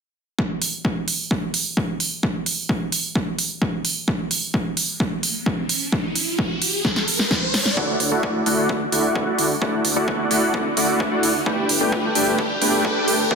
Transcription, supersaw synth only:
7.77 7.95 A3 medium
7.77 7.95 E4 medium
7.77 7.95 F#4 medium
7.77 7.95 D5 medium
7.77 7.95 F#5 medium
8.12 8.41 A3 medium
8.12 8.41 E4 medium
8.12 8.41 F#4 medium
8.12 8.41 D5 medium
8.12 8.41 F#5 loud
8.46 8.76 A3 loud
8.46 8.76 E4 medium
8.46 8.76 F#4 medium
8.46 8.76 D5 medium
8.46 8.76 F#5 loud
8.92 9.24 A3 medium
8.92 9.24 E4 medium
8.92 9.24 F#4 medium
8.92 9.24 D5 medium
8.92 9.24 F#5 medium
9.27 9.45 A3 medium
9.27 9.45 E4 medium
9.27 9.45 F#4 medium
9.27 9.45 D5 medium
9.27 9.45 F#5 medium
9.62 9.80 A3 medium
9.62 9.80 E4 medium
9.62 9.80 F#4 medium
9.62 9.80 D5 medium
9.62 9.80 F#5 medium
9.96 10.26 A3 medium
9.96 10.26 E4 medium
9.96 10.26 F#4 medium
9.96 10.26 D5 medium
9.96 10.26 F#5 medium
10.31 10.60 A3 loud
10.31 10.60 E4 medium
10.31 10.60 F#4 medium
10.31 10.60 D5 medium
10.31 10.60 F#5 loud
10.77 11.09 A3 medium
10.77 11.09 E4 medium
10.77 11.09 F#4 medium
10.77 11.09 D5 medium
10.77 11.09 F#5 medium
11.12 11.30 A3 medium
11.12 11.30 E4 medium
11.12 11.30 F#4 medium
11.12 11.30 D5 medium
11.12 11.30 F#5 medium
11.46 11.65 A3 medium
11.46 11.65 D4 medium
11.46 11.65 G4 medium
11.46 11.65 B4 medium
11.46 11.65 G5 medium
11.81 12.10 A3 medium
11.81 12.10 D4 medium
11.81 12.10 G4 medium
11.81 12.10 B4 medium
11.81 12.10 G5 loud
12.15 12.45 A3 loud
12.15 12.45 D4 medium
12.15 12.45 G4 medium
12.15 12.45 B4 medium
12.15 12.45 G5 loud
12.62 12.93 A3 medium
12.62 12.93 D4 medium
12.62 12.93 G4 medium
12.62 12.93 B4 medium
12.62 12.93 G5 medium
12.96 13.15 A3 medium
12.96 13.15 D4 medium
12.96 13.15 G4 medium
12.96 13.15 B4 medium
12.96 13.15 G5 medium
13.31 13.35 A3 medium
13.31 13.35 D4 medium
13.31 13.35 G4 medium
13.31 13.35 B4 medium
13.31 13.35 G5 medium

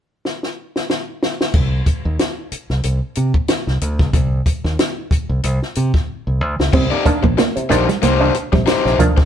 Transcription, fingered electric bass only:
1.54 1.81 C2 medium
2.05 2.17 D#2 medium
2.52 muted fingered electric bass stroke soft
2.70 2.81 C2 medium
2.84 2.99 C2 medium
3.17 3.32 C3 medium
3.67 3.79 C2 medium
3.82 3.99 D2 medium
3.99 4.11 C#2 medium
4.14 4.40 C2 medium
4.64 4.76 D#2 medium
5.11 muted fingered electric bass stroke soft
5.29 5.41 C2 medium
5.44 5.59 C2 medium
5.77 5.91 C3 medium
6.27 6.41 C2 medium
6.41 6.56 D2 medium
6.59 6.71 C#2 medium
6.74 6.88 C2 loud
7.24 7.35 A#1 medium
7.57 muted fingered electric bass stroke soft
7.71 7.85 A#1 medium
8.03 8.29 C2 medium
8.53 8.65 A#1 medium
8.85 8.97 A#1 medium
8.99 9.18 D2 medium
9.18 9.25 C#2 medium

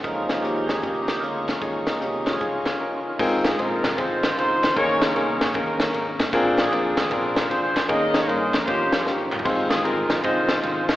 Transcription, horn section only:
3.47 3.59 G#4 medium
3.60 3.98 D#4 medium
3.60 3.98 F4 medium
3.60 3.99 A#4 medium
3.99 4.37 D#4 medium
3.99 4.37 F4 medium
3.99 4.38 C5 medium
4.38 4.74 D#4 medium
4.38 4.74 F4 medium
4.38 4.74 C5 loud
4.77 5.51 G#4 medium
4.77 5.01 A#4 medium
4.77 5.02 C#5 loud
5.03 5.54 C#4 medium
5.03 5.41 A#4 loud
5.42 5.55 C#5 loud
5.55 6.29 C#4 medium
5.55 6.20 A#4 medium
6.60 7.33 C4 medium
6.60 7.10 D4 medium
6.60 6.95 G#4 loud
6.97 7.10 G#4 loud
7.11 7.86 D4 medium
7.11 7.62 F4 medium
7.11 7.50 A#4 loud
7.50 7.61 C5 loud
7.62 7.88 F4 medium
7.62 7.88 G#4 medium
7.62 7.87 C5 loud
7.88 8.28 G#4 medium
7.88 8.58 A#4 medium
7.88 8.21 D#5 loud
8.20 8.28 C#5 loud
8.28 8.65 G#4 medium
8.28 8.60 C5 loud
8.59 8.67 A#4 medium
8.66 9.42 F4 medium
8.66 9.06 G4 medium
8.66 8.97 C5 loud
8.98 9.06 G#4 medium
9.06 9.43 C#4 medium
9.06 9.43 G4 medium
9.06 9.38 A#4 loud
9.70 9.83 G#4 medium
9.84 10.23 D#4 medium
9.84 10.24 F4 medium
9.84 10.21 A#4 medium
10.23 10.96 D#4 medium
10.23 10.88 F4 medium
10.23 10.60 C5 loud
10.62 10.86 C5 medium
10.88 10.96 F4 medium
10.88 10.96 G#4 medium
10.88 10.96 C#5 loud

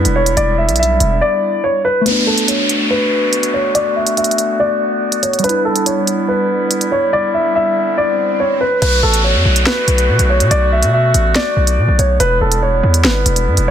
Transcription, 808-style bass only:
0.05 0.36 E1 loud
0.37 0.70 E1 loud
0.69 0.99 B1 loud
1.00 1.21 E1 loud
8.82 9.02 B1 loud
9.03 9.36 A1 loud
9.35 9.45 F#2 loud
9.45 9.66 B1 loud
9.88 10.10 B1 loud
10.09 10.19 B2 loud
10.19 10.42 B1 loud
10.40 10.50 B2 loud
10.51 10.84 B1 loud
10.83 11.13 B2 loud
11.14 11.35 A1 loud
11.57 11.79 B1 loud
11.78 11.88 B2 loud
11.88 11.98 B1 loud
11.99 12.19 B1 loud
12.20 12.40 E1 loud
12.41 12.82 E1 loud
12.83 13.06 E2 loud
13.05 13.25 G1 loud
13.26 13.48 E1 loud
13.47 13.57 G2 loud
13.57 13.71 E1 loud

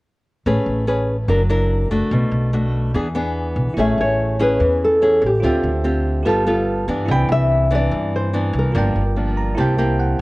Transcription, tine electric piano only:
3.74 5.38 E4 soft
3.78 5.40 C#5 soft
3.78 5.41 G#5 medium
5.40 6.23 F4 soft
5.40 6.24 C5 soft
5.44 6.25 E5 soft
5.44 6.26 G5 medium
6.23 7.06 G4 soft
6.23 7.07 B4 medium
6.27 7.08 F5 soft
6.27 7.09 A5 medium
7.06 8.71 C4 soft
7.06 8.70 E4 soft
7.06 8.72 D5 soft
7.12 8.73 B5 medium
8.72 9.54 F4 soft
8.72 9.55 A#4 soft
8.72 9.56 D5 soft
8.78 9.57 G5 medium
9.37 9.56 A#5 soft
9.55 10.21 E4 medium
9.55 10.21 A#4 soft
9.55 9.77 A5 soft
9.59 10.21 C5 soft
9.59 9.77 G5 medium
9.79 9.98 G5 soft
10.00 10.19 F#5 soft

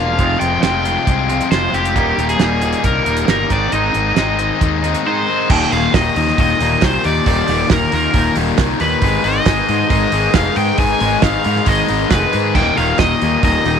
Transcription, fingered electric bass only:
0.00 0.19 E1 medium
0.19 0.35 F1 medium
0.41 0.58 F1 medium
0.63 0.96 F1 medium
1.07 1.40 C2 medium
1.51 1.68 F1 medium
1.73 1.96 F1 medium
1.96 2.12 D#1 medium
2.18 2.34 D#1 medium
2.40 2.73 D#1 medium
2.84 3.01 C2 medium
3.06 3.23 D#1 medium
3.28 3.45 G1 medium
3.51 3.67 G#1 medium
3.73 3.89 G#1 medium
3.95 4.11 G#1 medium
4.17 4.50 G#1 medium
4.61 4.94 D#2 medium
5.50 5.64 D#1 medium
5.72 5.86 D#1 medium
5.94 6.08 D#1 medium
6.16 6.30 D#2 medium
6.38 6.52 D#1 medium
6.60 6.74 D#1 medium
6.82 6.96 C2 medium
7.05 7.19 D#2 medium
7.26 7.40 D#1 loud
7.49 7.62 D#1 medium
7.70 7.84 D#1 medium
7.93 8.07 D#2 medium
8.14 8.28 D#1 medium
8.37 8.50 D#1 medium
8.58 8.72 C2 medium
8.81 8.94 D#2 loud
9.02 9.16 G#1 loud
9.25 9.38 G#1 medium
9.46 9.60 G#1 medium
9.69 9.83 G#2 medium
9.90 10.04 G#1 medium
10.12 10.26 G#1 medium
10.34 10.48 F1 medium
10.56 10.70 G#2 loud
10.79 10.93 G#1 loud
11.01 11.15 G#1 medium
11.23 11.36 G#1 medium
11.46 11.59 G#2 medium
11.67 11.81 G#1 medium
11.90 12.03 G#1 medium
12.11 12.25 F1 medium
12.34 12.57 G#2 medium
12.55 12.69 D#1 medium
12.78 12.91 D#1 medium
12.99 13.13 D#1 medium
13.22 13.36 D#2 medium
13.43 13.57 D#1 loud
13.66 13.79 D#1 medium

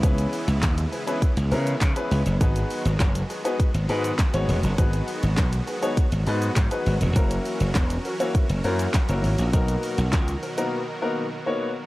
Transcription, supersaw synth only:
0.00 2.37 C#3 medium
0.00 2.37 E3 medium
0.00 7.12 G#3 medium
0.00 2.37 B3 medium
0.00 2.37 E4 loud
2.41 7.12 D#3 medium
2.41 11.86 F#3 medium
2.41 7.12 B3 medium
2.41 11.86 F#4 loud
7.16 9.51 E3 medium
7.16 9.51 C#4 medium
7.16 11.86 A#4 medium
9.53 11.86 D#3 medium

